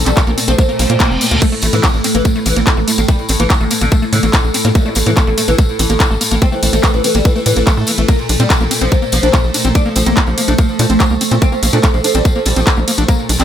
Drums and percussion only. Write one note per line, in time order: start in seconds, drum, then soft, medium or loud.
0.06 clap soft
0.06 closed hi-hat medium
0.06 tambourine soft
0.17 kick loud
0.17 clap loud
0.17 closed hi-hat medium
0.17 tambourine medium
0.27 tambourine soft
0.38 open hi-hat loud
0.38 tambourine loud
0.48 closed hi-hat medium
0.48 tambourine soft
0.58 kick loud
0.58 closed hi-hat medium
0.58 tambourine soft
0.70 tambourine soft
0.79 open hi-hat loud
0.79 tambourine medium
0.90 closed hi-hat medium
0.90 tambourine soft
0.99 kick loud
0.99 clap loud
0.99 closed hi-hat medium
0.99 tambourine soft
1.11 tambourine soft
1.21 open hi-hat loud
1.21 tambourine loud
1.31 closed hi-hat medium
1.31 tambourine soft
1.42 kick loud
1.42 closed hi-hat medium
1.42 ride medium
1.42 tambourine medium
1.42 crash medium
1.53 tambourine soft
1.62 open hi-hat loud
1.62 ride medium
1.62 tambourine medium
1.73 closed hi-hat medium
1.73 tambourine soft
1.83 kick loud
1.83 clap loud
1.83 closed hi-hat medium
1.83 ride medium
1.83 tambourine medium
1.94 tambourine soft
2.04 open hi-hat loud
2.04 ride medium
2.04 tambourine loud
2.15 closed hi-hat medium
2.15 tambourine soft
2.25 kick loud
2.25 closed hi-hat medium
2.25 ride medium
2.25 tambourine medium
2.36 tambourine soft
2.46 open hi-hat loud
2.46 ride medium
2.46 tambourine medium
2.56 closed hi-hat medium
2.56 tambourine soft
2.67 kick loud
2.67 clap loud
2.67 closed hi-hat medium
2.67 ride medium
2.67 tambourine soft
2.77 tambourine soft
2.88 open hi-hat loud
2.88 ride medium
2.88 tambourine loud
2.98 closed hi-hat medium
2.98 tambourine soft
3.08 kick loud
3.08 closed hi-hat medium
3.08 ride medium
3.08 tambourine medium
3.19 tambourine soft
3.29 open hi-hat loud
3.29 ride medium
3.29 tambourine loud
3.40 closed hi-hat medium
3.40 tambourine soft
3.50 kick loud
3.50 clap loud
3.50 closed hi-hat medium
3.50 ride medium
3.50 tambourine medium
3.60 tambourine soft
3.71 open hi-hat loud
3.71 ride medium
3.71 tambourine medium
3.81 closed hi-hat medium
3.81 tambourine soft
3.92 kick loud
3.92 closed hi-hat medium
3.92 ride medium
3.92 tambourine medium
4.03 tambourine soft
4.13 open hi-hat loud
4.13 ride medium
4.13 tambourine medium
4.23 closed hi-hat medium
4.23 tambourine soft
4.33 kick loud
4.33 clap loud
4.33 closed hi-hat medium
4.33 ride medium
4.33 tambourine medium
4.44 tambourine soft
4.54 open hi-hat loud
4.54 ride medium
4.54 tambourine loud
4.64 closed hi-hat medium
4.64 tambourine soft
4.75 kick loud
4.75 closed hi-hat medium
4.75 ride medium
4.75 tambourine soft
4.86 tambourine soft
4.95 open hi-hat loud
4.95 ride medium
4.95 tambourine loud
5.06 closed hi-hat medium
5.06 tambourine soft
5.16 kick loud
5.16 clap loud
5.16 closed hi-hat medium
5.16 ride medium
5.16 tambourine medium
5.27 tambourine soft
5.38 open hi-hat loud
5.38 ride medium
5.38 tambourine loud
5.48 closed hi-hat medium
5.48 tambourine soft
5.58 kick loud
5.58 closed hi-hat medium
5.58 ride medium
5.58 tambourine medium
5.69 tambourine soft
5.79 open hi-hat loud
5.79 ride medium
5.79 tambourine loud
5.89 closed hi-hat medium
5.89 tambourine soft
6.00 kick loud
6.00 clap loud
6.00 closed hi-hat medium
6.00 ride medium
6.00 tambourine medium
6.11 tambourine soft
6.21 open hi-hat loud
6.21 ride medium
6.21 tambourine loud
6.31 closed hi-hat medium
6.31 tambourine soft
6.42 kick loud
6.42 closed hi-hat medium
6.42 ride medium
6.42 tambourine soft
6.53 tambourine soft
6.63 open hi-hat loud
6.63 ride medium
6.63 tambourine loud
6.73 closed hi-hat medium
6.73 tambourine soft
6.83 kick loud
6.83 clap loud
6.83 closed hi-hat medium
6.83 ride medium
6.83 tambourine medium
6.94 tambourine soft
7.04 open hi-hat loud
7.04 ride medium
7.04 tambourine medium
7.15 closed hi-hat medium
7.15 tambourine soft
7.25 kick loud
7.25 closed hi-hat medium
7.25 ride medium
7.25 tambourine medium
7.36 tambourine soft
7.46 open hi-hat loud
7.46 ride medium
7.46 tambourine loud
7.56 closed hi-hat medium
7.56 tambourine soft
7.67 kick loud
7.67 clap loud
7.67 closed hi-hat medium
7.67 ride medium
7.67 tambourine medium
7.77 tambourine soft
7.87 open hi-hat loud
7.87 ride medium
7.87 tambourine loud
7.97 closed hi-hat medium
7.97 tambourine soft
8.08 kick loud
8.08 closed hi-hat medium
8.08 ride medium
8.08 tambourine medium
8.19 tambourine soft
8.29 open hi-hat loud
8.29 ride medium
8.29 tambourine medium
8.40 closed hi-hat medium
8.40 tambourine soft
8.50 kick loud
8.50 clap loud
8.50 closed hi-hat medium
8.50 ride medium
8.50 tambourine medium
8.61 tambourine soft
8.71 open hi-hat loud
8.71 ride medium
8.71 tambourine loud
8.81 closed hi-hat medium
8.81 tambourine soft
8.92 kick loud
8.92 closed hi-hat medium
8.92 ride medium
8.92 tambourine medium
9.02 tambourine soft
9.12 open hi-hat loud
9.12 ride medium
9.12 tambourine loud
9.23 closed hi-hat medium
9.23 tambourine soft
9.34 kick loud
9.34 clap loud
9.34 closed hi-hat medium
9.34 ride medium
9.34 tambourine medium
9.44 tambourine soft
9.54 open hi-hat loud
9.54 ride medium
9.54 tambourine loud
9.65 closed hi-hat medium
9.65 tambourine soft
9.75 kick loud
9.75 closed hi-hat medium
9.75 ride medium
9.75 tambourine soft
9.86 tambourine soft
9.96 open hi-hat loud
9.96 ride medium
9.96 tambourine loud
10.06 closed hi-hat medium
10.06 tambourine soft
10.17 kick loud
10.17 clap loud
10.17 closed hi-hat medium
10.17 ride medium
10.17 tambourine soft
10.27 tambourine soft
10.38 open hi-hat loud
10.38 ride medium
10.38 tambourine medium
10.48 closed hi-hat medium
10.48 tambourine soft
10.58 kick loud
10.58 closed hi-hat medium
10.58 ride medium
10.58 tambourine soft
10.69 tambourine soft
10.79 open hi-hat loud
10.79 ride medium
10.79 tambourine loud
10.90 closed hi-hat medium
10.90 tambourine soft
11.00 kick loud
11.00 clap loud
11.00 closed hi-hat medium
11.00 ride medium
11.00 tambourine medium
11.10 tambourine soft
11.21 open hi-hat loud
11.21 ride medium
11.21 tambourine medium
11.31 closed hi-hat medium
11.31 tambourine soft
11.42 kick loud
11.42 closed hi-hat medium
11.42 ride medium
11.42 tambourine medium
11.53 tambourine soft
11.63 open hi-hat loud
11.63 ride medium
11.63 tambourine medium
11.73 closed hi-hat medium
11.83 kick loud
11.83 clap loud
11.83 closed hi-hat medium
11.83 ride medium
11.83 tambourine soft
11.94 tambourine soft
12.04 open hi-hat loud
12.04 ride medium
12.04 tambourine medium
12.15 closed hi-hat medium
12.15 tambourine soft
12.25 kick loud
12.25 closed hi-hat medium
12.25 ride medium
12.25 tambourine medium
12.35 tambourine soft
12.46 open hi-hat loud
12.46 ride medium
12.46 tambourine medium
12.56 closed hi-hat medium
12.56 tambourine soft
12.67 kick loud
12.67 clap loud
12.67 closed hi-hat medium
12.67 ride medium
12.67 tambourine soft
12.76 tambourine soft
12.88 open hi-hat loud
12.88 ride medium
12.88 tambourine medium
12.98 closed hi-hat medium
12.98 tambourine soft
13.08 kick loud
13.08 closed hi-hat medium
13.08 ride medium
13.08 tambourine medium
13.20 tambourine soft
13.29 open hi-hat loud
13.29 ride medium
13.29 tambourine medium
13.39 clap soft
13.39 closed hi-hat medium
13.39 tambourine soft